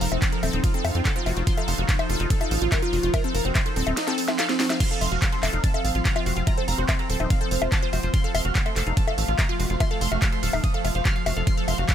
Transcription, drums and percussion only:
0.01 open hi-hat
0.12 closed hi-hat, high bongo
0.22 kick, clap, closed hi-hat, ride
0.32 closed hi-hat
0.43 open hi-hat, high bongo
0.53 closed hi-hat
0.64 kick, closed hi-hat, ride
0.74 closed hi-hat
0.85 open hi-hat, high bongo
0.95 closed hi-hat
1.05 kick, clap, closed hi-hat, ride
1.16 closed hi-hat
1.26 open hi-hat, high bongo
1.37 closed hi-hat
1.47 kick, closed hi-hat, ride
1.57 closed hi-hat, high bongo
1.68 open hi-hat
1.78 closed hi-hat
1.89 kick, clap, closed hi-hat, ride
1.99 closed hi-hat, high bongo
2.10 open hi-hat
2.20 closed hi-hat
2.30 kick, closed hi-hat, ride
2.41 closed hi-hat, high bongo
2.51 open hi-hat
2.62 closed hi-hat
2.72 kick, clap, closed hi-hat, ride, high bongo
2.82 closed hi-hat
2.93 open hi-hat
3.03 closed hi-hat
3.14 kick, closed hi-hat, ride, high bongo
3.24 closed hi-hat
3.35 open hi-hat
3.45 closed hi-hat
3.55 kick, clap, closed hi-hat, ride, high bongo
3.66 closed hi-hat
3.76 open hi-hat
3.87 closed hi-hat, high bongo
3.97 snare, closed hi-hat, ride
4.08 snare, closed hi-hat
4.18 open hi-hat
4.28 snare, closed hi-hat, high bongo
4.39 snare, clap, closed hi-hat, ride
4.49 snare, closed hi-hat
4.60 snare, open hi-hat
4.70 snare, closed hi-hat, high bongo
4.80 kick, closed hi-hat, ride, crash
4.91 closed hi-hat
5.01 open hi-hat, high bongo
5.12 closed hi-hat
5.22 kick, clap, closed hi-hat, ride
5.33 closed hi-hat
5.43 clap, open hi-hat, high bongo
5.53 closed hi-hat
5.64 kick, closed hi-hat, ride
5.74 closed hi-hat, high bongo
5.85 open hi-hat
5.95 closed hi-hat
6.05 kick, clap, closed hi-hat, ride
6.16 closed hi-hat, high bongo
6.26 open hi-hat
6.37 closed hi-hat
6.47 kick, closed hi-hat, ride, high bongo
6.58 closed hi-hat
6.68 open hi-hat
6.89 kick, clap, closed hi-hat, ride, high bongo
6.99 closed hi-hat
7.10 open hi-hat
7.20 closed hi-hat, high bongo
7.30 kick, closed hi-hat, ride
7.41 closed hi-hat
7.51 open hi-hat
7.62 closed hi-hat, high bongo
7.72 kick, clap, closed hi-hat, ride
7.83 closed hi-hat
7.93 open hi-hat, high bongo
8.03 closed hi-hat
8.14 kick, closed hi-hat, ride
8.24 closed hi-hat
8.35 open hi-hat, high bongo
8.45 closed hi-hat
8.55 kick, clap, closed hi-hat, ride
8.66 closed hi-hat, high bongo
8.76 clap, open hi-hat
8.87 closed hi-hat
8.97 kick, closed hi-hat, ride
9.08 closed hi-hat, high bongo
9.18 open hi-hat
9.28 closed hi-hat
9.39 kick, clap, closed hi-hat, ride, high bongo
9.49 closed hi-hat
9.60 open hi-hat
9.70 closed hi-hat
9.80 kick, closed hi-hat, ride, high bongo
9.91 closed hi-hat
10.01 open hi-hat
10.12 closed hi-hat, high bongo
10.22 kick, clap, closed hi-hat, ride
10.32 closed hi-hat
10.43 open hi-hat
10.53 open hi-hat, high bongo
10.64 kick, closed hi-hat, ride
10.74 closed hi-hat
10.85 open hi-hat, high bongo
10.95 closed hi-hat
11.05 kick, clap, closed hi-hat, ride
11.16 closed hi-hat
11.26 open hi-hat, high bongo
11.37 closed hi-hat
11.47 kick, closed hi-hat, ride
11.57 closed hi-hat
11.68 open hi-hat, high bongo
11.78 closed hi-hat
11.89 kick, clap, closed hi-hat, ride

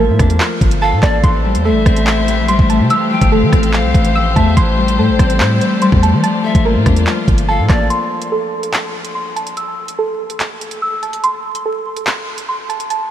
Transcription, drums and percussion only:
0.19 kick, cross-stick, closed hi-hat
0.30 closed hi-hat
0.40 clap
0.61 kick, closed hi-hat
0.71 closed hi-hat
1.03 kick, cross-stick, clap, closed hi-hat
1.24 kick, closed hi-hat
1.55 closed hi-hat
1.86 kick, cross-stick, closed hi-hat
1.96 closed hi-hat
2.07 clap
2.28 closed hi-hat
2.48 closed hi-hat
2.59 kick
2.70 closed hi-hat
2.90 closed hi-hat
3.22 kick, closed hi-hat
3.53 kick, cross-stick, closed hi-hat
3.63 closed hi-hat
3.73 clap
3.94 kick, closed hi-hat
4.05 closed hi-hat
4.36 kick, closed hi-hat
4.57 kick, closed hi-hat
4.88 closed hi-hat
5.19 kick, cross-stick, closed hi-hat
5.30 closed hi-hat
5.40 clap
5.61 closed hi-hat
5.82 closed hi-hat
5.92 kick
6.03 closed hi-hat
6.24 closed hi-hat
6.55 kick, closed hi-hat
6.86 kick, cross-stick, closed hi-hat
6.97 closed hi-hat
7.07 clap
7.28 kick, closed hi-hat
7.38 closed hi-hat
7.69 kick, cross-stick, clap, closed hi-hat
7.90 closed hi-hat
8.22 closed hi-hat
8.63 closed hi-hat
8.74 clap, closed hi-hat
9.05 closed hi-hat
9.36 closed hi-hat
9.47 closed hi-hat
9.57 closed hi-hat
9.88 closed hi-hat
10.30 closed hi-hat
10.40 clap, closed hi-hat
10.61 closed hi-hat
10.71 closed hi-hat
11.03 closed hi-hat
11.13 closed hi-hat
11.24 closed hi-hat
11.55 closed hi-hat
11.97 closed hi-hat
12.07 clap, closed hi-hat
12.38 closed hi-hat
12.70 closed hi-hat
12.80 closed hi-hat
12.90 closed hi-hat

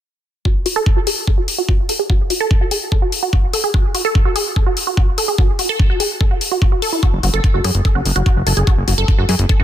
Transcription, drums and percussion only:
0.45 kick
0.66 open hi-hat
0.86 kick
1.07 open hi-hat
1.27 kick
1.48 open hi-hat
1.69 kick
1.89 open hi-hat
2.10 kick
2.30 open hi-hat
2.51 kick
2.71 open hi-hat
2.92 kick
3.12 open hi-hat
3.33 kick
3.53 open hi-hat
3.74 kick
3.95 open hi-hat
4.15 kick
4.36 open hi-hat
4.56 kick
4.77 open hi-hat
4.97 kick
5.18 open hi-hat
5.38 kick
5.59 open hi-hat
5.79 kick
6.00 open hi-hat
6.21 kick
6.41 open hi-hat
6.62 kick
6.82 open hi-hat
7.03 kick, closed hi-hat
7.23 open hi-hat
7.34 closed hi-hat
7.44 kick, closed hi-hat
7.64 open hi-hat
7.75 closed hi-hat
7.85 kick, closed hi-hat
8.05 open hi-hat
8.16 closed hi-hat
8.26 kick, closed hi-hat
8.47 open hi-hat
8.57 closed hi-hat
8.67 kick, closed hi-hat
8.88 open hi-hat
8.98 closed hi-hat
9.08 kick, closed hi-hat
9.29 open hi-hat
9.39 closed hi-hat
9.49 kick, closed hi-hat

